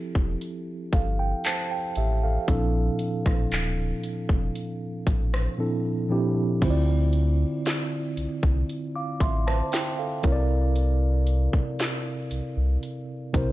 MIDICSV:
0, 0, Header, 1, 4, 480
1, 0, Start_track
1, 0, Key_signature, -1, "minor"
1, 0, Tempo, 1034483
1, 1151, Time_signature, 4, 2, 24, 8
1, 6274, End_track
2, 0, Start_track
2, 0, Title_t, "Tine electric piano"
2, 0, Program_c, 0, 4
2, 0, Control_c, 0, 64, 127
2, 0, Note_on_c, 0, 53, 82
2, 0, Note_on_c, 0, 60, 75
2, 0, Note_on_c, 0, 64, 72
2, 0, Note_on_c, 0, 67, 71
2, 0, Note_on_c, 0, 69, 92
2, 113, Note_off_c, 0, 53, 0
2, 115, Note_off_c, 0, 60, 0
2, 116, Note_off_c, 0, 64, 0
2, 118, Note_off_c, 0, 67, 0
2, 134, Note_off_c, 0, 69, 0
2, 434, Note_on_c, 0, 77, 68
2, 436, Note_on_c, 0, 69, 55
2, 546, Note_off_c, 0, 77, 0
2, 548, Note_off_c, 0, 69, 0
2, 554, Note_on_c, 0, 79, 74
2, 666, Note_off_c, 0, 79, 0
2, 674, Note_on_c, 0, 81, 69
2, 677, Note_on_c, 0, 72, 58
2, 787, Note_off_c, 0, 81, 0
2, 788, Note_off_c, 0, 72, 0
2, 795, Note_on_c, 0, 79, 72
2, 907, Note_off_c, 0, 79, 0
2, 916, Note_on_c, 0, 76, 70
2, 919, Note_on_c, 0, 67, 57
2, 1028, Note_off_c, 0, 76, 0
2, 1029, Note_off_c, 0, 67, 0
2, 1036, Note_on_c, 0, 77, 65
2, 1038, Note_on_c, 0, 69, 58
2, 1150, Note_on_c, 0, 46, 83
2, 1152, Note_on_c, 0, 53, 77
2, 1155, Note_on_c, 0, 60, 75
2, 1156, Control_c, 0, 64, 0
2, 1156, Note_on_c, 0, 62, 74
2, 1157, Note_off_c, 0, 69, 0
2, 1160, Note_on_c, 0, 64, 74
2, 1162, Note_on_c, 0, 69, 93
2, 1229, Control_c, 0, 64, 127
2, 1262, Note_off_c, 0, 77, 0
2, 2035, Note_off_c, 0, 46, 0
2, 2036, Note_off_c, 0, 53, 0
2, 2037, Note_off_c, 0, 60, 0
2, 2038, Note_off_c, 0, 62, 0
2, 2040, Note_off_c, 0, 64, 0
2, 2041, Note_off_c, 0, 69, 0
2, 2587, Note_on_c, 0, 46, 72
2, 2590, Note_on_c, 0, 53, 67
2, 2592, Note_on_c, 0, 60, 71
2, 2595, Note_on_c, 0, 62, 67
2, 2597, Note_on_c, 0, 64, 72
2, 2600, Note_on_c, 0, 69, 82
2, 2810, Note_off_c, 0, 46, 0
2, 2811, Note_off_c, 0, 53, 0
2, 2813, Note_off_c, 0, 60, 0
2, 2814, Note_off_c, 0, 62, 0
2, 2815, Note_off_c, 0, 64, 0
2, 2816, Note_off_c, 0, 69, 0
2, 2827, Note_on_c, 0, 46, 89
2, 2830, Note_on_c, 0, 53, 82
2, 2832, Note_on_c, 0, 60, 85
2, 2835, Note_on_c, 0, 62, 80
2, 2837, Note_on_c, 0, 64, 86
2, 2839, Note_on_c, 0, 67, 98
2, 3050, Note_off_c, 0, 46, 0
2, 3051, Note_off_c, 0, 53, 0
2, 3052, Note_off_c, 0, 60, 0
2, 3054, Note_off_c, 0, 62, 0
2, 3055, Note_off_c, 0, 64, 0
2, 3056, Note_off_c, 0, 67, 0
2, 3068, Note_on_c, 0, 50, 86
2, 3071, Note_on_c, 0, 60, 78
2, 3074, Note_on_c, 0, 64, 77
2, 3077, Control_c, 0, 64, 0
2, 3077, Note_on_c, 0, 65, 74
2, 3080, Note_on_c, 0, 72, 72
2, 3106, Note_off_c, 0, 72, 0
2, 3110, Note_on_c, 0, 74, 92
2, 3158, Control_c, 0, 64, 127
2, 3954, Note_off_c, 0, 50, 0
2, 3956, Note_off_c, 0, 60, 0
2, 3957, Note_off_c, 0, 64, 0
2, 3958, Note_off_c, 0, 65, 0
2, 3975, Note_off_c, 0, 74, 0
2, 4155, Note_on_c, 0, 86, 61
2, 4158, Note_on_c, 0, 77, 53
2, 4267, Note_off_c, 0, 86, 0
2, 4268, Note_off_c, 0, 77, 0
2, 4273, Note_on_c, 0, 84, 72
2, 4276, Note_on_c, 0, 76, 58
2, 4386, Note_off_c, 0, 84, 0
2, 4387, Note_off_c, 0, 76, 0
2, 4394, Note_on_c, 0, 81, 74
2, 4398, Note_on_c, 0, 72, 65
2, 4507, Note_off_c, 0, 81, 0
2, 4508, Note_off_c, 0, 72, 0
2, 4514, Note_on_c, 0, 79, 66
2, 4626, Note_off_c, 0, 79, 0
2, 4634, Note_on_c, 0, 77, 65
2, 4637, Note_on_c, 0, 69, 57
2, 4747, Note_on_c, 0, 48, 91
2, 4750, Note_on_c, 0, 60, 82
2, 4753, Note_on_c, 0, 64, 86
2, 4756, Control_c, 0, 64, 0
2, 4756, Note_on_c, 0, 70, 84
2, 4759, Note_on_c, 0, 73, 81
2, 4785, Note_off_c, 0, 73, 0
2, 4789, Note_on_c, 0, 74, 109
2, 4828, Control_c, 0, 64, 127
2, 4860, Note_off_c, 0, 77, 0
2, 4862, Note_off_c, 0, 69, 0
2, 5633, Note_off_c, 0, 48, 0
2, 5635, Note_off_c, 0, 60, 0
2, 5637, Note_off_c, 0, 64, 0
2, 5638, Note_off_c, 0, 70, 0
2, 5655, Note_off_c, 0, 74, 0
2, 6186, Note_on_c, 0, 48, 92
2, 6189, Note_on_c, 0, 60, 81
2, 6192, Note_on_c, 0, 64, 84
2, 6196, Note_on_c, 0, 70, 79
2, 6198, Note_on_c, 0, 72, 96
2, 6274, Note_off_c, 0, 48, 0
2, 6274, Note_off_c, 0, 60, 0
2, 6274, Note_off_c, 0, 64, 0
2, 6274, Note_off_c, 0, 70, 0
2, 6274, Note_off_c, 0, 72, 0
2, 6274, End_track
3, 0, Start_track
3, 0, Title_t, "Sub bass"
3, 0, Program_c, 1, 38
3, 71, Note_on_c, 1, 28, 93
3, 167, Note_off_c, 1, 28, 0
3, 431, Note_on_c, 1, 31, 91
3, 624, Note_off_c, 1, 31, 0
3, 913, Note_on_c, 1, 33, 92
3, 1105, Note_off_c, 1, 33, 0
3, 1152, Note_on_c, 1, 34, 117
3, 1344, Note_off_c, 1, 34, 0
3, 1512, Note_on_c, 1, 33, 89
3, 1608, Note_off_c, 1, 33, 0
3, 1632, Note_on_c, 1, 26, 101
3, 1824, Note_off_c, 1, 26, 0
3, 1992, Note_on_c, 1, 29, 84
3, 2088, Note_off_c, 1, 29, 0
3, 2352, Note_on_c, 1, 33, 86
3, 2544, Note_off_c, 1, 33, 0
3, 3071, Note_on_c, 1, 38, 105
3, 3457, Note_off_c, 1, 38, 0
3, 3792, Note_on_c, 1, 36, 48
3, 3839, Note_off_c, 1, 36, 0
3, 3912, Note_on_c, 1, 36, 88
3, 4008, Note_off_c, 1, 36, 0
3, 4271, Note_on_c, 1, 33, 95
3, 4464, Note_off_c, 1, 33, 0
3, 4752, Note_on_c, 1, 36, 107
3, 5330, Note_off_c, 1, 36, 0
3, 5713, Note_on_c, 1, 36, 52
3, 5760, Note_off_c, 1, 36, 0
3, 5832, Note_on_c, 1, 36, 94
3, 5928, Note_off_c, 1, 36, 0
3, 6191, Note_on_c, 1, 34, 85
3, 6274, Note_off_c, 1, 34, 0
3, 6274, End_track
4, 0, Start_track
4, 0, Title_t, "Drums"
4, 70, Note_on_c, 9, 36, 92
4, 117, Note_off_c, 9, 36, 0
4, 192, Note_on_c, 9, 42, 72
4, 238, Note_off_c, 9, 42, 0
4, 430, Note_on_c, 9, 36, 94
4, 430, Note_on_c, 9, 42, 72
4, 476, Note_off_c, 9, 36, 0
4, 477, Note_off_c, 9, 42, 0
4, 668, Note_on_c, 9, 42, 68
4, 675, Note_on_c, 9, 39, 122
4, 715, Note_off_c, 9, 42, 0
4, 722, Note_off_c, 9, 39, 0
4, 907, Note_on_c, 9, 42, 78
4, 953, Note_off_c, 9, 42, 0
4, 1150, Note_on_c, 9, 42, 77
4, 1151, Note_on_c, 9, 36, 118
4, 1197, Note_off_c, 9, 36, 0
4, 1197, Note_off_c, 9, 42, 0
4, 1387, Note_on_c, 9, 42, 76
4, 1434, Note_off_c, 9, 42, 0
4, 1512, Note_on_c, 9, 36, 94
4, 1518, Note_on_c, 9, 37, 68
4, 1558, Note_off_c, 9, 36, 0
4, 1564, Note_off_c, 9, 37, 0
4, 1631, Note_on_c, 9, 42, 73
4, 1637, Note_on_c, 9, 39, 110
4, 1678, Note_off_c, 9, 42, 0
4, 1683, Note_off_c, 9, 39, 0
4, 1872, Note_on_c, 9, 42, 75
4, 1919, Note_off_c, 9, 42, 0
4, 1991, Note_on_c, 9, 36, 89
4, 2038, Note_off_c, 9, 36, 0
4, 2113, Note_on_c, 9, 42, 73
4, 2160, Note_off_c, 9, 42, 0
4, 2351, Note_on_c, 9, 36, 92
4, 2353, Note_on_c, 9, 42, 70
4, 2397, Note_off_c, 9, 36, 0
4, 2400, Note_off_c, 9, 42, 0
4, 2477, Note_on_c, 9, 37, 95
4, 2523, Note_off_c, 9, 37, 0
4, 3071, Note_on_c, 9, 36, 117
4, 3071, Note_on_c, 9, 42, 78
4, 3071, Note_on_c, 9, 49, 99
4, 3118, Note_off_c, 9, 36, 0
4, 3118, Note_off_c, 9, 42, 0
4, 3118, Note_off_c, 9, 49, 0
4, 3308, Note_on_c, 9, 42, 75
4, 3354, Note_off_c, 9, 42, 0
4, 3552, Note_on_c, 9, 42, 76
4, 3558, Note_on_c, 9, 38, 114
4, 3599, Note_off_c, 9, 42, 0
4, 3604, Note_off_c, 9, 38, 0
4, 3792, Note_on_c, 9, 42, 79
4, 3839, Note_off_c, 9, 42, 0
4, 3911, Note_on_c, 9, 36, 93
4, 3958, Note_off_c, 9, 36, 0
4, 4034, Note_on_c, 9, 42, 76
4, 4081, Note_off_c, 9, 42, 0
4, 4271, Note_on_c, 9, 36, 93
4, 4273, Note_on_c, 9, 42, 75
4, 4317, Note_off_c, 9, 36, 0
4, 4320, Note_off_c, 9, 42, 0
4, 4397, Note_on_c, 9, 37, 97
4, 4443, Note_off_c, 9, 37, 0
4, 4510, Note_on_c, 9, 42, 65
4, 4518, Note_on_c, 9, 38, 127
4, 4557, Note_off_c, 9, 42, 0
4, 4564, Note_off_c, 9, 38, 0
4, 4748, Note_on_c, 9, 42, 78
4, 4751, Note_on_c, 9, 36, 111
4, 4795, Note_off_c, 9, 42, 0
4, 4797, Note_off_c, 9, 36, 0
4, 4991, Note_on_c, 9, 42, 81
4, 5037, Note_off_c, 9, 42, 0
4, 5228, Note_on_c, 9, 42, 76
4, 5274, Note_off_c, 9, 42, 0
4, 5351, Note_on_c, 9, 36, 91
4, 5398, Note_off_c, 9, 36, 0
4, 5471, Note_on_c, 9, 42, 74
4, 5477, Note_on_c, 9, 38, 120
4, 5518, Note_off_c, 9, 42, 0
4, 5523, Note_off_c, 9, 38, 0
4, 5712, Note_on_c, 9, 42, 85
4, 5758, Note_off_c, 9, 42, 0
4, 5953, Note_on_c, 9, 42, 72
4, 5999, Note_off_c, 9, 42, 0
4, 6190, Note_on_c, 9, 36, 96
4, 6192, Note_on_c, 9, 42, 74
4, 6236, Note_off_c, 9, 36, 0
4, 6239, Note_off_c, 9, 42, 0
4, 6274, End_track
0, 0, End_of_file